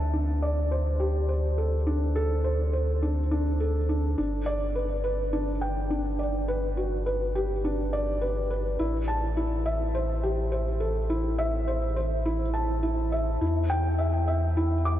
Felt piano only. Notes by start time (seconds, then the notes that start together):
Already playing: A5
0.13 D4
0.42 D5
0.71 C5
1.00 G4
1.29 C5
1.58 A4
1.87 D4
2.16 A4
2.44 C5
2.73 C5
3.02 D4
3.31 D4
3.60 A4
3.89 D4
4.18 D4
4.46 D5
4.75 B4
5.04 B4
5.33 D4
5.61 G5
5.90 D4
6.19 D5
6.48 B4
6.77 F#4
7.06 B4
7.35 G4
7.64 D4
7.93 D5
8.21 B4
8.50 B4
8.79 E4
9.08 A5
9.37 E4
9.66 E5
9.95 C5
10.23 G4
10.52 C5
10.80 A4
11.10 E4
11.38 E5
11.68 C5
11.96 C5
12.25 E4
12.54 A5
12.83 E4
13.12 E5
13.41 E4
13.70 G5
13.99 E5
14.28 E5
14.57 E4
14.85 D6